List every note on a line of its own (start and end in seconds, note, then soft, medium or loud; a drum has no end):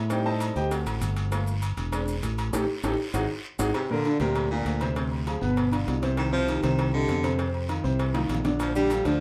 0.00 0.50 A2 medium
0.09 0.54 G3 medium
0.09 0.54 C4 medium
0.09 0.54 D#4 medium
0.09 0.26 G4 medium
0.09 0.25 C5 medium
0.09 0.25 D#5 medium
0.09 0.26 G5 medium
0.09 cowbell loud
0.09 long guiro medium
0.09 maracas medium
0.26 0.54 A4 medium
0.26 0.54 C5 medium
0.26 0.54 D#5 medium
0.26 0.54 A5 loud
0.26 low agogo medium
0.40 cowbell medium
0.40 low agogo loud
0.40 short guiro medium
0.40 maracas medium
0.56 0.84 D2 medium
0.56 0.71 G4 medium
0.56 0.71 C5 medium
0.56 0.71 D#5 medium
0.56 0.71 G5 medium
0.56 short guiro medium
0.56 maracas soft
0.70 1.28 A3 medium
0.70 1.28 C4 medium
0.70 1.29 F#4 medium
0.70 cowbell loud
0.70 low agogo medium
0.70 long guiro medium
0.70 maracas medium
0.86 1.00 A1 medium
0.86 cowbell medium
0.86 low agogo loud
0.86 maracas medium
1.01 1.72 G1 loud
1.01 cowbell medium
1.01 short guiro medium
1.01 maracas medium
1.16 cowbell medium
1.16 short guiro medium
1.16 maracas soft
1.31 1.51 A3 medium
1.31 1.52 A#3 medium
1.31 1.52 F4 medium
1.31 cowbell loud
1.31 low agogo medium
1.31 long guiro medium
1.31 maracas medium
1.47 maracas medium
1.62 cowbell medium
1.62 low agogo medium
1.62 short guiro medium
1.62 maracas medium
1.77 2.19 E1 medium
1.77 cowbell medium
1.77 low agogo medium
1.77 short guiro medium
1.77 maracas soft
1.92 2.12 G#3 medium
1.92 2.12 C4 medium
1.92 2.13 D4 medium
1.92 cowbell loud
1.92 low agogo loud
1.92 long guiro medium
1.92 maracas medium
2.08 maracas medium
2.23 2.51 A1 loud
2.23 cowbell medium
2.23 low agogo medium
2.23 short guiro medium
2.23 maracas medium
2.38 cowbell medium
2.38 low agogo loud
2.38 short guiro medium
2.38 maracas soft
2.53 2.64 A1 loud
2.53 2.63 D#4 medium
2.53 2.63 G4 loud
2.53 2.63 A4 medium
2.53 cowbell loud
2.53 high timbale loud
2.53 long guiro loud
2.53 maracas loud
2.83 2.95 A1 loud
2.83 2.94 D#4 medium
2.83 2.93 G4 loud
2.83 2.93 A4 loud
2.83 cowbell loud
2.83 high timbale loud
2.83 long guiro loud
2.83 maracas loud
3.14 3.25 G#1 loud
3.14 3.24 D#4 loud
3.14 3.24 F#4 loud
3.14 3.24 G#4 loud
3.14 cowbell loud
3.14 high timbale loud
3.14 long guiro loud
3.14 maracas loud
3.59 3.70 G#1 loud
3.59 3.69 D#4 loud
3.59 3.69 F#4 loud
3.59 3.69 G#4 loud
3.59 cowbell loud
3.59 high timbale loud
3.59 long guiro loud
3.59 maracas loud
3.74 3.92 C3 medium
3.74 cowbell loud
3.74 low agogo loud
3.74 long guiro medium
3.90 4.02 A#2 medium
3.90 4.19 D3 loud
3.90 4.03 A#3 medium
3.90 4.03 A#4 medium
4.04 4.18 D3 medium
4.04 4.18 D4 medium
4.04 4.18 F4 medium
4.04 cowbell medium
4.04 low agogo medium
4.04 short guiro medium
4.20 4.62 D2 medium
4.20 4.45 A#2 medium
4.20 4.48 C3 medium
4.20 4.45 A#3 medium
4.20 4.45 A#4 medium
4.20 cowbell medium
4.20 low agogo medium
4.20 short guiro medium
4.35 cowbell loud
4.35 low agogo loud
4.35 long guiro medium
4.51 4.93 A#2 loud
4.51 4.76 D3 medium
4.51 4.76 D4 medium
4.51 4.76 F4 medium
4.65 5.36 D2 loud
4.65 cowbell medium
4.65 low agogo medium
4.65 short guiro medium
4.80 4.94 C3 medium
4.80 4.94 C4 medium
4.80 4.94 C5 medium
4.80 cowbell medium
4.80 low agogo loud
4.80 short guiro medium
4.95 5.21 C3 medium
4.95 5.21 C4 medium
4.95 5.21 C5 medium
4.95 cowbell loud
4.95 long guiro medium
5.12 low agogo medium
5.26 5.39 F3 medium
5.26 5.39 F4 medium
5.26 5.39 G#4 medium
5.26 cowbell medium
5.26 low agogo loud
5.26 short guiro medium
5.41 5.84 G1 medium
5.41 5.66 B2 medium
5.41 5.67 B3 medium
5.41 5.67 B4 medium
5.41 short guiro medium
5.56 cowbell loud
5.56 low agogo medium
5.56 long guiro medium
5.71 5.97 D3 medium
5.71 5.97 D4 medium
5.71 5.97 F4 medium
5.71 cowbell medium
5.71 low agogo loud
5.87 6.57 C2 medium
5.87 cowbell medium
5.87 low timbale medium
5.87 short guiro medium
6.02 6.27 C3 medium
6.02 6.27 C4 medium
6.02 6.28 C5 loud
6.02 cowbell medium
6.02 short guiro medium
6.17 6.32 D#3 medium
6.17 cowbell loud
6.17 low agogo medium
6.17 long guiro medium
6.32 6.45 C3 medium
6.32 6.61 F3 loud
6.32 6.45 C4 medium
6.32 6.45 C5 loud
6.48 6.60 D#3 medium
6.48 6.61 D#4 medium
6.48 6.61 G4 medium
6.48 cowbell medium
6.48 low agogo medium
6.48 short guiro medium
6.62 7.05 C2 medium
6.62 6.88 C3 medium
6.62 6.91 D#3 medium
6.62 6.88 C4 medium
6.62 6.89 C5 medium
6.62 cowbell medium
6.62 low agogo medium
6.62 short guiro medium
6.78 cowbell loud
6.78 low agogo loud
6.78 long guiro medium
6.93 7.18 C3 medium
6.93 7.36 D3 medium
6.93 7.19 G4 medium
6.93 7.19 D#5 medium
7.08 7.79 F2 medium
7.08 cowbell medium
7.08 low timbale medium
7.08 low agogo medium
7.08 short guiro medium
7.23 7.36 C3 medium
7.23 7.36 C4 medium
7.23 7.36 C5 medium
7.23 cowbell medium
7.23 low agogo loud
7.23 short guiro medium
7.38 7.63 C3 medium
7.38 7.63 C4 medium
7.38 7.63 C5 medium
7.38 cowbell loud
7.38 long guiro medium
7.54 low agogo medium
7.69 7.81 D#3 medium
7.69 7.82 D#4 medium
7.69 7.82 F4 medium
7.69 cowbell medium
7.69 low agogo loud
7.69 short guiro medium
7.83 8.26 C2 medium
7.83 8.09 C3 medium
7.83 8.09 C4 medium
7.83 8.09 C5 medium
7.83 short guiro medium
7.99 cowbell loud
7.99 low agogo medium
7.99 long guiro medium
8.13 8.39 D#3 medium
8.13 8.39 D#4 medium
8.13 8.39 F4 medium
8.13 cowbell medium
8.13 high bongo loud
8.13 low agogo loud
8.29 9.00 A#1 medium
8.29 cowbell medium
8.29 low timbale medium
8.29 short guiro medium
8.34 low bongo medium
8.44 8.70 D3 medium
8.44 8.70 D4 medium
8.44 8.70 D5 medium
8.44 cowbell medium
8.44 low bongo loud
8.44 short guiro medium
8.59 8.74 F3 medium
8.59 cowbell loud
8.59 low agogo loud
8.59 long guiro medium
8.59 maracas medium
8.75 8.88 D3 medium
8.75 9.06 G3 loud
8.75 8.88 D4 medium
8.75 8.88 D5 medium
8.75 maracas medium
8.90 9.03 F3 medium
8.90 9.03 F4 medium
8.90 9.03 A4 medium
8.90 cowbell medium
8.90 low agogo medium
8.90 short guiro medium
8.90 maracas medium
9.05 9.20 D2 medium
9.05 9.20 D3 medium
9.05 9.20 F3 loud
9.05 9.20 D4 medium
9.05 9.20 D5 medium
9.05 cowbell medium
9.05 low agogo medium
9.05 short guiro medium
9.05 maracas soft